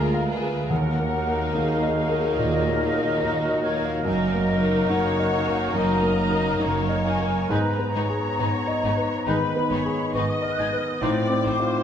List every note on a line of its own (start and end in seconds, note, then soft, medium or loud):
0.00 0.61 D2 medium
0.00 0.68 D2 medium
0.00 0.40 G#3 medium
0.00 0.54 G#3 medium
0.00 0.72 G#3 soft
0.00 0.26 A#3 soft
0.00 0.26 F4 medium
0.00 0.40 F4 medium
0.00 0.54 F4 medium
0.00 0.26 G#4 soft
0.00 0.41 G#4 medium
0.00 0.29 A#4 medium
0.00 0.39 A#4 medium
0.00 0.72 A#4 medium
0.00 0.14 F5 medium
0.00 0.25 A#5 medium
0.14 0.59 F5 medium
0.27 0.69 A#3 soft
0.27 0.69 F4 soft
0.27 0.70 G#4 soft
0.27 0.71 B4 medium
0.41 0.70 G#4 soft
0.68 1.45 D#2 medium
0.68 2.35 D#2 medium
0.68 1.46 D#2 medium
0.68 1.93 D#3 medium
0.68 4.03 F#3 medium
0.68 4.03 A#3 medium
0.68 4.02 D#4 medium
0.68 4.03 D#4 medium
0.68 4.02 A#4 medium
0.68 1.54 A#4 medium
0.68 1.50 F#5 medium
0.99 1.44 A#3 soft
1.12 1.95 A#3 soft
1.12 1.95 D#4 medium
1.12 1.96 A#4 soft
1.27 1.72 A#4 medium
1.55 2.29 D#2 medium
1.55 2.30 D#2 medium
1.55 2.00 D#4 soft
1.55 3.24 G#4 medium
1.55 2.29 F5 medium
1.82 2.28 D#5 soft
1.98 2.81 A#3 medium
1.98 2.81 D#4 medium
1.98 2.81 A#4 medium
2.09 2.55 A#4 medium
2.30 2.38 F5 medium
2.36 3.14 D#2 medium
2.36 2.84 A#2 soft
2.36 3.63 D#5 medium
2.68 3.13 A#3 soft
2.82 3.62 A#3 soft
2.82 3.62 D#4 medium
2.82 3.63 A#4 soft
2.95 3.40 A#4 medium
3.21 3.96 D#2 medium
3.21 3.97 D#2 medium
3.21 3.66 D#4 soft
3.21 4.06 F#4 medium
3.49 3.94 D#5 medium
3.62 4.04 A#3 soft
3.62 4.03 D#4 soft
3.62 4.04 A#4 medium
3.62 3.84 C#5 medium
3.77 4.06 A#4 soft
3.84 4.06 F5 medium
4.04 4.81 F#1 medium
4.04 5.70 F#2 medium
4.04 4.80 F#2 medium
4.04 7.33 F#3 medium
4.04 4.47 A#3 soft
4.04 7.32 A#3 medium
4.04 4.46 D#4 soft
4.04 7.33 D#4 medium
4.04 7.32 D#4 medium
4.04 4.46 A#4 soft
4.04 7.45 A#4 medium
4.04 4.89 A#4 medium
4.04 4.89 D#5 medium
4.35 4.79 A#3 medium
4.48 5.30 A#3 medium
4.48 5.30 D#4 medium
4.48 5.31 A#4 soft
4.61 5.06 A#4 medium
4.89 5.66 F#1 medium
4.89 5.65 F#2 medium
4.89 5.35 D#4 medium
4.89 5.75 C#5 medium
4.89 5.75 F#5 medium
5.19 5.64 D#5 medium
5.31 6.16 A#3 medium
5.31 6.16 D#4 soft
5.31 6.16 A#4 medium
5.47 5.92 A#4 medium
5.74 6.51 F#1 medium
5.74 7.45 F#2 medium
5.74 6.51 F#2 medium
5.74 6.61 D#5 medium
5.74 6.78 A#5 medium
6.02 6.49 A#3 soft
6.17 7.03 A#3 medium
6.17 7.02 D#4 medium
6.17 7.03 A#4 medium
6.31 6.77 A#4 medium
6.60 7.39 F#1 medium
6.60 7.39 F#2 medium
6.60 7.07 D#4 medium
6.60 7.50 C#5 medium
6.89 7.37 D#5 medium
7.03 7.48 A#3 soft
7.03 7.48 D#4 soft
7.03 7.49 A#4 soft
7.03 7.48 G#5 medium
7.19 7.49 A#4 soft
7.49 7.58 G#1 medium
7.49 7.57 G#2 medium
7.49 9.23 G#2 medium
7.49 7.84 G#3 medium
7.49 10.98 B3 medium
7.49 7.58 B3 medium
7.49 10.98 D#4 medium
7.49 7.84 D#4 medium
7.49 7.58 D#4 medium
7.49 7.57 G#4 medium
7.49 7.95 B4 medium
7.49 7.84 B4 medium
7.49 9.28 A#5 medium
7.79 8.27 B3 medium
7.94 8.03 G#1 medium
7.94 8.02 G#2 medium
7.94 8.03 B3 soft
7.94 8.03 D#4 medium
7.94 8.04 G#4 soft
7.94 9.24 C#5 medium
8.09 8.57 G#4 medium
8.39 8.47 G#1 medium
8.39 8.47 G#2 medium
8.39 8.48 B3 soft
8.39 8.47 D#4 medium
8.39 8.48 G#4 medium
8.39 8.86 B4 soft
8.67 9.15 D#5 medium
8.83 8.92 G#1 medium
8.83 8.91 G#2 medium
8.83 8.92 B3 medium
8.83 8.91 D#4 medium
8.83 8.93 G#4 medium
8.97 9.44 B4 medium
9.26 9.35 G#1 medium
9.26 9.35 G#2 medium
9.26 9.74 D#3 soft
9.26 9.60 G#3 medium
9.26 9.35 B3 medium
9.26 9.34 D#4 medium
9.26 9.60 D#4 medium
9.26 9.37 G#4 medium
9.26 9.70 B4 medium
9.26 9.60 B4 medium
9.26 10.15 B5 medium
9.56 10.03 B3 soft
9.70 9.78 G#1 medium
9.70 9.78 G#2 medium
9.70 9.79 B3 soft
9.70 9.79 D#4 medium
9.70 9.81 G#4 soft
9.70 10.16 C#5 medium
9.85 10.32 G#4 medium
10.14 10.22 G#1 medium
10.14 10.22 G#2 medium
10.14 10.24 B3 medium
10.14 10.23 D#4 medium
10.14 10.24 G#4 medium
10.14 10.61 B4 medium
10.14 11.01 D#5 medium
10.14 10.31 C#6 medium
10.30 10.42 D#6 medium
10.42 10.89 D#5 medium
10.42 10.52 F6 medium
10.52 10.61 F#6 medium
10.59 10.67 G#1 soft
10.59 10.67 G#2 medium
10.59 10.68 B3 soft
10.59 10.68 D#4 soft
10.59 10.68 G#4 soft
10.59 10.69 G#6 medium
10.69 10.79 F#6 medium
10.73 11.02 B4 medium
10.77 10.89 F6 medium
10.88 11.01 D#6 medium
11.01 11.10 A1 medium
11.01 11.83 A2 medium
11.01 11.10 A2 medium
11.01 11.34 F3 medium
11.01 11.83 C4 medium
11.01 11.11 C4 medium
11.01 11.83 D#4 medium
11.01 11.10 D#4 medium
11.01 11.35 D#4 medium
11.01 11.11 F4 medium
11.01 11.35 C5 medium
11.01 11.46 D5 medium
11.01 11.83 D6 medium
11.30 11.77 C4 medium
11.45 11.54 A1 medium
11.45 11.53 A2 medium
11.45 11.53 C4 medium
11.45 11.53 D#4 medium
11.45 11.54 F4 soft
11.45 11.83 C5 medium
11.60 11.83 F4 medium